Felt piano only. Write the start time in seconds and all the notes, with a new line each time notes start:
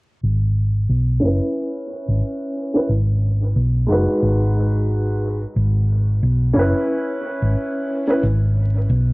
1.20 C#4 E4
1.25 B4
2.74 C#4 E4 B4
3.87 G#3 D#4 F#4
3.92 B4
6.53 C#4 E4
6.59 B4
8.07 C#4 E4 B4